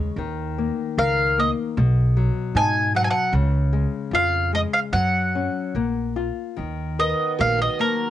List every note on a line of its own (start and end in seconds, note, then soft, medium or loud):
0.00 0.15 D#2 medium
0.00 0.13 C#3 medium
0.00 0.16 G#3 soft
0.16 0.69 D#2 medium
0.16 1.74 D#3 medium
0.58 0.97 A#3 soft
0.98 1.49 C#2 medium
0.98 1.37 A#4 medium
0.98 1.39 F5 medium
1.38 1.76 A#3 soft
1.38 1.50 D#5 medium
1.77 2.28 B1 medium
1.77 3.29 B2 medium
2.17 2.54 F#3 soft
2.55 3.05 G#2 medium
2.55 2.93 D#4 medium
2.55 2.92 G#5 medium
2.95 3.32 F#3 soft
2.95 3.01 F#5 medium
3.04 3.09 G#5 medium
3.10 3.33 F#5 medium
3.32 3.84 C#2 medium
3.32 4.89 C#3 medium
3.73 4.11 G#3 medium
4.11 4.64 F2 medium
4.11 4.52 F4 medium
4.11 4.51 F5 medium
4.53 4.92 G#3 soft
4.53 4.60 D#5 medium
4.73 4.79 F5 medium
4.93 5.46 F#2 medium
4.93 5.73 F#3 medium
4.93 6.12 F#5 medium
5.35 5.74 C#4 soft
5.75 6.29 A#1 medium
5.75 6.56 A#3 medium
6.16 6.56 F4 soft
6.56 7.12 D#2 medium
6.56 8.10 D#3 medium
6.99 7.37 B3 medium
6.99 7.38 A#4 soft
6.99 7.41 D#5 medium
7.39 7.66 A#1 medium
7.39 7.58 A#3 medium
7.39 7.78 F#4 soft
7.39 7.59 F5 medium
7.58 7.78 B3 medium
7.58 7.80 D#5 medium
7.79 8.10 F#3 medium
7.79 8.10 A#3 soft
7.79 8.10 A#4 medium